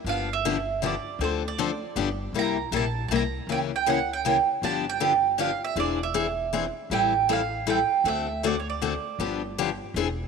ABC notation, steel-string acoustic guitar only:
X:1
M:3/4
L:1/16
Q:"Swing" 1/4=158
K:Ddor
V:1 name="Steel-string acoustic guitar"
[D,F,B,DG]2 z2 [D,F,B,DG] z3 [D,F,B,DG] z3 | [D,F,CDA]2 z2 [D,F,CDA] z3 [D,F,B,DG] z3 | [C,G,_B,EG]2 z2 [C,G,B,EG] z3 [C,G,B,EG] z3 | [^C,E,^A,^CG]2 z2 [C,E,A,CG] z3 [C,E,A,CG] z3 |
[D,F,B,DG]2 z2 [D,F,B,DG] z3 [D,F,B,DG] z3 | [E,^B,D^G]2 z2 [E,B,DG] z3 [E,B,DG] z3 | [E,G,CEA]2 z2 [E,G,CEA] z3 [E,G,CEA] z3 | [D,A,C^FA]2 z2 [D,A,CFA] z3 [D,A,CFA] z3 |
[D,F,B,DG]2 z2 [D,F,B,DG] z3 [E,^B,D^G] z3 |]